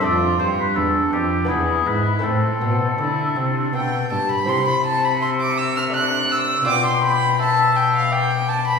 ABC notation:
X:1
M:3/4
L:1/16
Q:1/4=83
K:Am
V:1 name="Violin"
F4 D4 E4 | C4 E2 C D g2 a b | [K:C] c' b a b c' d' e' f' ^f'2 e'2 | d' c' b2 a2 g f g2 a b |]
V:2 name="Oboe"
d2 c B A2 G2 ^G2 B2 | A8- A2 z2 | [K:C] z4 e4 d4 | g4 e4 d4 |]
V:3 name="Lute"
[A,DA]8 [B,DE]4 | [A,CE]12 | [K:C] [CE]8 [A,DA]4 | [Fd]12 |]
V:4 name="Lute" clef=bass
F,,2 G,,2 E,,2 F,,2 E,,2 ^G,,2 | A,,2 B,,2 D,2 C,2 B,,2 G,,2 | [K:C] C,12 | B,,12 |]
V:5 name="Cello" clef=bass
F,,2 G,,2 E,,2 F,,2 E,,2 ^G,,2 | A,,2 B,,2 D,2 C,2 B,,2 G,,2 | [K:C] C,12 | B,,12 |]